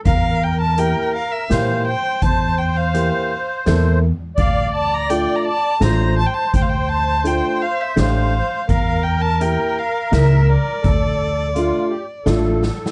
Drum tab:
HH |x-----x-----x-----|x-----x-----x-----|x-----x-----x-----|x-----x-----x-----|
SD |------------o-----|------------o-----|------------o-----|------------o-----|
BD |o-----------------|o-----------------|o-----------------|o-----------------|

HH |x-----x-----x-----|x-----x-----x-----|
SD |------------o-----|------------o--o-o|
BD |o-----------------|o-----------------|